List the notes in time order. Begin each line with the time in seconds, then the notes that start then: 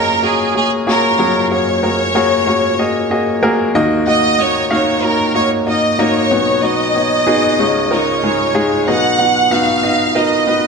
Already playing: F#1 F#2 A#3 F#4 G#4 A#4 C#5 D#5
0.23 A#3 F#4 G#4 C#5
0.55 A#3 F#4 G#4 C#5
0.87 A#3 F#4 G#4 A#4 C#5
1.19 F#1 F#2 A#3 F#4 G#4 C#5
1.51 A#3 F#4 G#4 C#5
1.83 A#3 F#4 G#4 A#4
2.15 A#3 F#4 G#4 C#5
2.47 A#3 F#4 G#4 C#5
2.79 A#3 F#4 G#4 D#5
3.11 A#3 F#4 G#4 D#5
3.43 A#3 F#4 G#4 A#4
3.75 D#2 D#3 A#3 D#4 F#4 D#5
4.06 A#3 D#4 F#4 D#5 F#5
4.38 A#3 D#4 F#4 C#5 D#5
4.71 A#3 D#4 F#4 C#5 F5
5.02 A#3 D#4 F#4 A#4 C#5
5.34 A#3 D#4 F#4 C#5 D#5
5.67 A#3 D#4 F#4 D#5
5.98 A#3 D#4 F#4 C#5 D#5
6.31 B1 B2 B3 D#4 F#4 C#5
6.63 B3 D#4 F#4 D#5
6.95 B3 D#4 F#4 C#5
7.27 B3 D#4 F#4 G#4
7.59 C#2 C#3 G#3 D#4 F4 C#5
7.91 G#3 D#4 F4 A#4 C#5
8.23 G#3 D#4 F4 G#4
8.55 G#3 D#4 F4 G#4
8.87 B1 B2 B3 D#4 F#4 D#5 F#5
9.19 B3 D#4 F#4 F#5
9.51 B3 D#4 F#4 F5
9.83 B3 D#4 F#4 D#5
10.15 B3 D#4 F#4 A#4 D#5
10.47 B3 D#4 F#4 B4